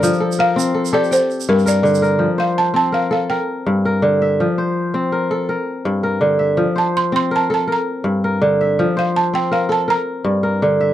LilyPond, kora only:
<<
  \new Staff \with { instrumentName = "Kora" } { \time 12/8 \key f \major \tempo 4. = 109 bes'8 a'8 bes'4 a'8 g'8 g''4. bes'4 bes'8~ | bes'8 c''4. bes'4 bes'4. bes'4 e''8~ | e''8 c''4. bes'4 bes'4. bes'4 e''8~ | e''8 c''4. bes'4 bes'4. bes'4 e''8~ |
e''8 c''4. bes'4 bes'4. bes'4 e''8 | }
  \new Staff \with { instrumentName = "Kora" } { \clef bass \time 12/8 \key f \major f4 r8 c'4 a'8 r4 g,4 d4 | f4 r8 c'4 a'8 r4 g,4 d4 | f4 r8 c'4 a'8 r4 g,4 d4 | f4 r8 c'4 a'8 r4 g,4 d4 |
f4 r8 c'4 a'8 r4 g,4 d4 | }
>>